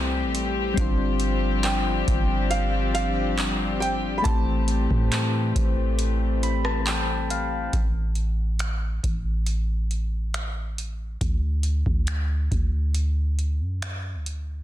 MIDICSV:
0, 0, Header, 1, 6, 480
1, 0, Start_track
1, 0, Key_signature, 0, "minor"
1, 0, Tempo, 869565
1, 428, Time_signature, 4, 2, 24, 8
1, 8078, End_track
2, 0, Start_track
2, 0, Title_t, "Grand piano"
2, 0, Program_c, 0, 0
2, 0, Note_on_c, 0, 79, 90
2, 167, Note_off_c, 0, 79, 0
2, 905, Note_on_c, 0, 79, 90
2, 1382, Note_on_c, 0, 77, 89
2, 1401, Note_off_c, 0, 79, 0
2, 1617, Note_off_c, 0, 77, 0
2, 1625, Note_on_c, 0, 77, 97
2, 2085, Note_off_c, 0, 77, 0
2, 2100, Note_on_c, 0, 79, 92
2, 2307, Note_on_c, 0, 83, 81
2, 2312, Note_off_c, 0, 79, 0
2, 2340, Note_on_c, 0, 81, 102
2, 2347, Note_off_c, 0, 83, 0
2, 3762, Note_off_c, 0, 81, 0
2, 8078, End_track
3, 0, Start_track
3, 0, Title_t, "Synth keys"
3, 0, Program_c, 1, 88
3, 0, Control_c, 1, 64, 127
3, 0, Note_on_c, 1, 57, 68
3, 0, Note_on_c, 1, 60, 60
3, 0, Note_on_c, 1, 64, 63
3, 0, Note_on_c, 1, 67, 65
3, 0, Note_on_c, 1, 72, 77
3, 398, Note_off_c, 1, 57, 0
3, 403, Note_off_c, 1, 60, 0
3, 408, Note_off_c, 1, 64, 0
3, 408, Note_on_c, 1, 55, 80
3, 413, Note_off_c, 1, 67, 0
3, 419, Note_on_c, 1, 60, 76
3, 429, Note_on_c, 1, 62, 77
3, 436, Note_off_c, 1, 72, 0
3, 436, Control_c, 1, 64, 0
3, 439, Note_on_c, 1, 65, 74
3, 448, Note_on_c, 1, 72, 87
3, 541, Control_c, 1, 64, 127
3, 2316, Note_off_c, 1, 55, 0
3, 2322, Note_off_c, 1, 60, 0
3, 2327, Note_off_c, 1, 62, 0
3, 2330, Note_on_c, 1, 57, 66
3, 2332, Note_off_c, 1, 65, 0
3, 2336, Note_off_c, 1, 72, 0
3, 2341, Note_on_c, 1, 60, 61
3, 2349, Note_on_c, 1, 52, 61
3, 2355, Control_c, 1, 64, 0
3, 2360, Note_on_c, 1, 67, 60
3, 2371, Note_on_c, 1, 72, 75
3, 2463, Control_c, 1, 64, 127
3, 3551, Note_on_c, 1, 83, 70
3, 3661, Note_off_c, 1, 83, 0
3, 3670, Note_on_c, 1, 81, 70
3, 3781, Note_off_c, 1, 81, 0
3, 3793, Note_on_c, 1, 79, 73
3, 4014, Note_off_c, 1, 79, 0
3, 4034, Note_on_c, 1, 77, 72
3, 4237, Note_off_c, 1, 57, 0
3, 4242, Note_off_c, 1, 60, 0
3, 4247, Note_off_c, 1, 52, 0
3, 4252, Note_off_c, 1, 67, 0
3, 4254, Note_off_c, 1, 77, 0
3, 4258, Note_off_c, 1, 72, 0
3, 4276, Control_c, 1, 64, 0
3, 4365, Control_c, 1, 64, 127
3, 6195, Control_c, 1, 64, 0
3, 8078, End_track
4, 0, Start_track
4, 0, Title_t, "String section"
4, 0, Program_c, 2, 48
4, 0, Note_on_c, 2, 52, 76
4, 0, Note_on_c, 2, 55, 73
4, 0, Note_on_c, 2, 57, 72
4, 0, Note_on_c, 2, 60, 73
4, 0, Note_on_c, 2, 67, 88
4, 407, Note_off_c, 2, 57, 0
4, 408, Note_off_c, 2, 52, 0
4, 427, Note_on_c, 2, 53, 76
4, 429, Note_on_c, 2, 62, 75
4, 2329, Note_off_c, 2, 53, 0
4, 2329, Note_off_c, 2, 62, 0
4, 2343, Note_on_c, 2, 52, 78
4, 2344, Note_on_c, 2, 57, 73
4, 4246, Note_off_c, 2, 55, 0
4, 4246, Note_off_c, 2, 60, 0
4, 4246, Note_off_c, 2, 67, 0
4, 4247, Note_off_c, 2, 52, 0
4, 4247, Note_off_c, 2, 57, 0
4, 8078, End_track
5, 0, Start_track
5, 0, Title_t, "808-style bass"
5, 0, Program_c, 3, 38
5, 0, Note_on_c, 3, 36, 107
5, 128, Note_on_c, 3, 33, 103
5, 136, Note_off_c, 3, 36, 0
5, 413, Note_off_c, 3, 33, 0
5, 427, Note_on_c, 3, 31, 110
5, 1126, Note_off_c, 3, 31, 0
5, 1147, Note_on_c, 3, 31, 97
5, 2326, Note_off_c, 3, 31, 0
5, 2348, Note_on_c, 3, 33, 119
5, 2694, Note_off_c, 3, 33, 0
5, 2708, Note_on_c, 3, 45, 101
5, 3054, Note_off_c, 3, 45, 0
5, 3068, Note_on_c, 3, 33, 102
5, 4246, Note_off_c, 3, 33, 0
5, 4269, Note_on_c, 3, 33, 105
5, 4967, Note_off_c, 3, 33, 0
5, 4988, Note_on_c, 3, 33, 93
5, 6166, Note_off_c, 3, 33, 0
5, 6188, Note_on_c, 3, 38, 103
5, 6534, Note_off_c, 3, 38, 0
5, 6548, Note_on_c, 3, 38, 99
5, 6894, Note_off_c, 3, 38, 0
5, 6908, Note_on_c, 3, 38, 100
5, 7509, Note_on_c, 3, 42, 96
5, 7517, Note_off_c, 3, 38, 0
5, 7809, Note_on_c, 3, 38, 100
5, 7817, Note_off_c, 3, 42, 0
5, 8078, Note_off_c, 3, 38, 0
5, 8078, End_track
6, 0, Start_track
6, 0, Title_t, "Drums"
6, 191, Note_on_c, 9, 42, 75
6, 246, Note_off_c, 9, 42, 0
6, 427, Note_on_c, 9, 36, 118
6, 428, Note_on_c, 9, 42, 75
6, 482, Note_off_c, 9, 36, 0
6, 483, Note_off_c, 9, 42, 0
6, 660, Note_on_c, 9, 42, 66
6, 715, Note_off_c, 9, 42, 0
6, 901, Note_on_c, 9, 42, 80
6, 906, Note_on_c, 9, 39, 109
6, 956, Note_off_c, 9, 42, 0
6, 961, Note_off_c, 9, 39, 0
6, 1146, Note_on_c, 9, 36, 87
6, 1147, Note_on_c, 9, 42, 68
6, 1202, Note_off_c, 9, 36, 0
6, 1202, Note_off_c, 9, 42, 0
6, 1384, Note_on_c, 9, 42, 84
6, 1439, Note_off_c, 9, 42, 0
6, 1627, Note_on_c, 9, 42, 67
6, 1682, Note_off_c, 9, 42, 0
6, 1868, Note_on_c, 9, 42, 60
6, 1869, Note_on_c, 9, 39, 119
6, 1923, Note_off_c, 9, 42, 0
6, 1924, Note_off_c, 9, 39, 0
6, 2110, Note_on_c, 9, 42, 77
6, 2166, Note_off_c, 9, 42, 0
6, 2347, Note_on_c, 9, 36, 119
6, 2347, Note_on_c, 9, 42, 77
6, 2402, Note_off_c, 9, 36, 0
6, 2402, Note_off_c, 9, 42, 0
6, 2582, Note_on_c, 9, 42, 60
6, 2638, Note_off_c, 9, 42, 0
6, 2708, Note_on_c, 9, 36, 92
6, 2763, Note_off_c, 9, 36, 0
6, 2825, Note_on_c, 9, 42, 82
6, 2830, Note_on_c, 9, 39, 110
6, 2880, Note_off_c, 9, 42, 0
6, 2885, Note_off_c, 9, 39, 0
6, 3067, Note_on_c, 9, 36, 88
6, 3069, Note_on_c, 9, 42, 69
6, 3123, Note_off_c, 9, 36, 0
6, 3124, Note_off_c, 9, 42, 0
6, 3304, Note_on_c, 9, 42, 82
6, 3360, Note_off_c, 9, 42, 0
6, 3550, Note_on_c, 9, 42, 65
6, 3605, Note_off_c, 9, 42, 0
6, 3669, Note_on_c, 9, 37, 89
6, 3724, Note_off_c, 9, 37, 0
6, 3790, Note_on_c, 9, 42, 63
6, 3791, Note_on_c, 9, 39, 119
6, 3845, Note_off_c, 9, 42, 0
6, 3846, Note_off_c, 9, 39, 0
6, 4032, Note_on_c, 9, 42, 76
6, 4087, Note_off_c, 9, 42, 0
6, 4268, Note_on_c, 9, 36, 116
6, 4268, Note_on_c, 9, 42, 67
6, 4323, Note_off_c, 9, 36, 0
6, 4323, Note_off_c, 9, 42, 0
6, 4501, Note_on_c, 9, 42, 59
6, 4556, Note_off_c, 9, 42, 0
6, 4744, Note_on_c, 9, 42, 74
6, 4749, Note_on_c, 9, 26, 109
6, 4799, Note_off_c, 9, 42, 0
6, 4804, Note_off_c, 9, 26, 0
6, 4988, Note_on_c, 9, 36, 78
6, 4989, Note_on_c, 9, 42, 65
6, 5043, Note_off_c, 9, 36, 0
6, 5044, Note_off_c, 9, 42, 0
6, 5224, Note_on_c, 9, 42, 82
6, 5280, Note_off_c, 9, 42, 0
6, 5469, Note_on_c, 9, 42, 60
6, 5525, Note_off_c, 9, 42, 0
6, 5709, Note_on_c, 9, 42, 58
6, 5710, Note_on_c, 9, 26, 109
6, 5764, Note_off_c, 9, 42, 0
6, 5765, Note_off_c, 9, 26, 0
6, 5952, Note_on_c, 9, 42, 67
6, 6007, Note_off_c, 9, 42, 0
6, 6188, Note_on_c, 9, 36, 112
6, 6189, Note_on_c, 9, 42, 70
6, 6243, Note_off_c, 9, 36, 0
6, 6244, Note_off_c, 9, 42, 0
6, 6421, Note_on_c, 9, 42, 61
6, 6476, Note_off_c, 9, 42, 0
6, 6547, Note_on_c, 9, 36, 86
6, 6602, Note_off_c, 9, 36, 0
6, 6663, Note_on_c, 9, 42, 76
6, 6668, Note_on_c, 9, 26, 107
6, 6718, Note_off_c, 9, 42, 0
6, 6723, Note_off_c, 9, 26, 0
6, 6908, Note_on_c, 9, 36, 83
6, 6909, Note_on_c, 9, 42, 61
6, 6963, Note_off_c, 9, 36, 0
6, 6965, Note_off_c, 9, 42, 0
6, 7146, Note_on_c, 9, 42, 82
6, 7201, Note_off_c, 9, 42, 0
6, 7389, Note_on_c, 9, 42, 62
6, 7445, Note_off_c, 9, 42, 0
6, 7630, Note_on_c, 9, 42, 61
6, 7631, Note_on_c, 9, 26, 108
6, 7686, Note_off_c, 9, 26, 0
6, 7686, Note_off_c, 9, 42, 0
6, 7873, Note_on_c, 9, 42, 70
6, 7928, Note_off_c, 9, 42, 0
6, 8078, End_track
0, 0, End_of_file